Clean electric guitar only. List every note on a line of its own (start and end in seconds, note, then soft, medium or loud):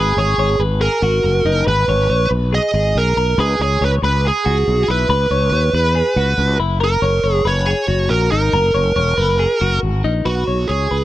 0.00 0.17 B4 loud
0.18 0.38 C#5 medium
0.39 0.59 C#5 medium
0.60 0.81 B4 loud
0.81 1.03 G#4 medium
1.03 1.43 F#4 medium
1.46 1.67 D#4 medium
1.67 1.88 B4 loud
1.89 2.09 C#5 medium
2.10 2.31 C#5 medium
2.31 2.53 B4 medium
2.53 2.73 G#4 medium
2.74 3.14 G#4 medium
3.17 3.38 A#4 medium
3.39 3.61 B4 loud
3.61 3.81 C#5 medium
3.82 4.03 C#5 medium
4.03 4.24 B4 medium
4.25 4.45 G#4 medium
4.46 4.86 F#4 medium
4.88 5.09 E4 medium
5.10 5.31 B4 loud
5.31 5.52 C#5 medium
5.53 5.74 C#5 medium
5.75 5.96 B4 medium
5.95 6.17 G#4 medium
6.17 6.57 F#4 medium
6.60 6.80 E4 medium
6.80 7.02 A#4 loud
7.02 7.22 C#5 medium
7.24 7.45 C#5 medium
7.45 7.67 B4 medium
7.66 7.87 G#4 medium
7.88 8.29 F#4 medium
8.32 8.53 D#4 medium
8.53 8.74 A#4 loud
8.74 8.95 C#5 medium
8.96 9.17 C#5 medium
9.18 9.39 B4 medium
9.39 9.61 G#4 medium
9.61 10.02 F#4 medium
10.04 10.26 D#4 medium
10.26 10.47 B4 loud
10.47 10.68 C#5 medium
10.69 10.90 C#5 medium
10.91 11.04 B4 medium